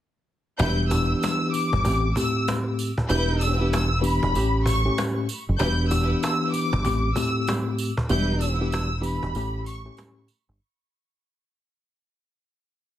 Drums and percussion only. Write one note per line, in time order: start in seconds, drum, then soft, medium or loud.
0.59 cajon bass loud
0.59 sleigh bells soft
0.80 cajon slap soft
0.91 cajon bass medium
0.91 sleigh bells medium
1.23 cajon slap loud
1.23 cajon slap medium
1.23 sleigh bells medium
1.53 cajon slap soft
1.53 sleigh bells medium
1.73 cajon bass medium
1.85 cajon bass loud
1.85 sleigh bells medium
2.16 cajon bass loud
2.16 sleigh bells medium
2.36 cajon slap soft
2.48 cajon slap loud
2.48 cajon slap medium
2.48 sleigh bells soft
2.79 sleigh bells medium
2.98 cajon bass medium
3.09 sleigh bells soft
3.41 cajon slap soft
3.41 sleigh bells medium
3.73 cajon slap loud
3.73 cajon slap medium
3.73 sleigh bells medium
4.03 cajon slap soft
4.03 sleigh bells medium
4.23 cajon bass loud
4.34 cajon slap medium
4.34 sleigh bells medium
4.66 cajon bass loud
4.66 sleigh bells medium
4.86 cajon slap soft
4.98 cajon slap loud
4.98 cajon slap medium
4.98 sleigh bells medium
5.29 sleigh bells medium
5.59 cajon bass loud
5.59 sleigh bells soft
5.80 cajon slap soft
5.91 cajon bass medium
5.91 sleigh bells medium
6.23 cajon slap loud
6.23 cajon slap medium
6.23 sleigh bells soft
6.53 cajon slap soft
6.53 sleigh bells medium
6.73 cajon bass loud
6.85 cajon bass loud
6.85 sleigh bells medium
7.16 cajon bass loud
7.16 sleigh bells medium
7.36 cajon slap soft
7.47 cajon slap loud
7.47 cajon slap medium
7.47 sleigh bells soft
7.78 sleigh bells medium
7.97 cajon bass medium
8.09 cajon slap medium
8.09 sleigh bells soft
8.30 cajon slap soft
8.41 cajon slap soft
8.41 sleigh bells medium
8.72 cajon slap loud
8.72 cajon slap medium
8.72 sleigh bells medium
9.03 cajon slap soft
9.03 sleigh bells medium
9.23 cajon bass medium
9.34 cajon slap medium
9.34 sleigh bells medium
9.65 cajon slap soft
9.65 sleigh bells medium
9.86 cajon slap soft
9.97 cajon slap loud
9.97 cajon slap medium
9.97 sleigh bells soft
10.27 cajon slap soft
10.27 sleigh bells medium
10.29 cajon slap soft